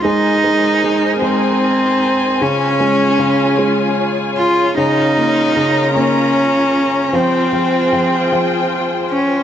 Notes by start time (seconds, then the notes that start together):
0.04 G#3 D#4 A#4 C5 G#5
0.44 G#3
0.84 G#3
1.22 G#3 C4
2.40 C#3 C#4 F4 G#4 C#5
2.80 G#3
3.19 C#3
3.58 G#3
4.38 F4
4.77 C#3 D#4 F4 A#4 A#5
5.17 A#3
5.56 C#3
5.96 A#3 C#4
7.13 F3 C4 F4 G#4 C5 G5
7.53 F3
7.93 F3
8.32 F3
9.12 C#4